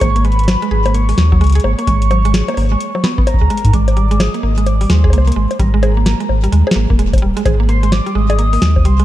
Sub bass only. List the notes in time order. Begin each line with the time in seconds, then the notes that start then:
0.01 G#1
0.71 G#1
1.18 D#2
1.41 C#2
1.64 G#1
1.87 G#1
2.57 G#1
3.41 C#2
3.65 G#2
3.73 G#1
4.43 G#1
4.90 D#2
5.13 C2
5.36 G#1
5.59 G#1
6.29 G#1
6.53 D#2
6.76 G#1
6.90 D#1
7.22 D#1
7.46 G#1
8.15 G#1
8.62 D#2
8.85 C2